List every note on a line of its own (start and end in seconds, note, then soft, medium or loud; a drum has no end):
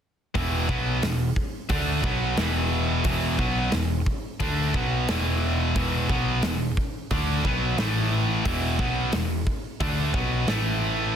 0.35 0.67 E1 medium
0.35 0.68 E2 medium
0.35 0.67 B2 loud
0.35 0.68 E3 loud
0.35 kick loud
0.35 open hi-hat medium
0.68 1.00 B1 medium
0.68 1.01 B2 medium
0.68 1.02 F#3 medium
0.68 1.02 B3 loud
0.68 kick medium
1.02 1.34 E1 medium
1.02 1.30 E2 medium
1.02 1.30 B2 medium
1.02 snare loud
1.02 open hi-hat medium
1.36 kick medium
1.69 2.01 D2 medium
1.69 2.01 D3 medium
1.69 2.02 A3 medium
1.69 2.02 D4 loud
1.69 kick loud
1.69 open hi-hat medium
2.02 2.35 B1 medium
2.02 2.36 B2 medium
2.02 2.36 F#3 loud
2.02 2.36 B3 loud
2.02 kick medium
2.36 3.01 E1 medium
2.36 3.03 E2 medium
2.36 3.03 B2 loud
2.36 3.03 E3 medium
2.36 snare loud
2.36 open hi-hat medium
3.04 3.36 E1 medium
3.04 3.37 E2 medium
3.04 3.37 B2 medium
3.04 3.38 E3 loud
3.04 kick loud
3.04 open hi-hat medium
3.38 3.70 B1 medium
3.38 3.70 B2 medium
3.38 3.72 F#3 loud
3.38 3.72 B3 loud
3.38 kick medium
3.71 4.05 E1 medium
3.71 3.99 E2 medium
3.71 3.99 B2 medium
3.71 snare loud
3.71 open hi-hat medium
4.06 kick medium
4.40 4.72 D2 medium
4.40 4.73 D3 medium
4.40 4.73 A3 loud
4.40 4.73 D4 loud
4.40 kick loud
4.40 open hi-hat medium
4.74 5.06 B1 medium
4.74 5.07 B2 loud
4.74 5.07 F#3 loud
4.74 5.07 B3 loud
4.74 kick medium
5.08 5.72 E1 medium
5.08 5.74 E2 medium
5.08 5.74 B2 loud
5.08 5.75 E3 loud
5.08 snare loud
5.08 open hi-hat medium
5.75 6.07 E1 medium
5.75 6.08 E2 medium
5.75 6.08 B2 medium
5.75 6.09 E3 loud
5.75 kick loud
5.75 open hi-hat medium
6.09 6.41 B1 medium
6.09 6.42 B2 loud
6.09 6.42 F#3 loud
6.09 6.43 B3 loud
6.09 kick loud
6.43 6.70 E2 medium
6.43 6.70 B2 medium
6.43 snare loud
6.43 open hi-hat medium
6.77 kick medium
7.11 7.42 D2 medium
7.11 7.44 D3 medium
7.11 7.44 A3 loud
7.11 7.44 D4 loud
7.11 kick loud
7.11 open hi-hat medium
7.44 7.76 B1 medium
7.44 7.77 B2 medium
7.44 7.77 F#3 loud
7.44 7.78 B3 loud
7.44 kick medium
7.78 8.41 A1 medium
7.78 8.44 A2 loud
7.78 8.45 E3 loud
7.78 8.45 A3 loud
7.78 snare loud
7.78 open hi-hat medium
8.45 8.77 E1 medium
8.45 8.79 E2 medium
8.45 8.79 B2 medium
8.45 8.79 E3 loud
8.45 kick loud
8.45 open hi-hat medium
8.79 9.10 B1 medium
8.79 9.13 B2 medium
8.79 9.13 F#3 medium
8.79 9.13 B3 loud
8.79 kick medium
9.12 9.45 E1 medium
9.12 9.41 E2 medium
9.12 9.41 B2 medium
9.12 snare loud
9.12 open hi-hat medium
9.47 kick medium
9.80 10.12 D2 medium
9.80 10.13 D3 loud
9.80 10.13 A3 medium
9.80 10.14 D4 loud
9.80 kick loud
9.80 open hi-hat medium
10.14 10.46 B1 medium
10.14 10.47 B2 medium
10.14 10.47 F#3 loud
10.14 10.47 B3 loud
10.14 kick medium
10.47 11.11 A1 medium
10.47 11.14 A2 medium
10.47 11.14 E3 loud
10.47 11.15 A3 medium
10.47 snare loud
10.47 open hi-hat medium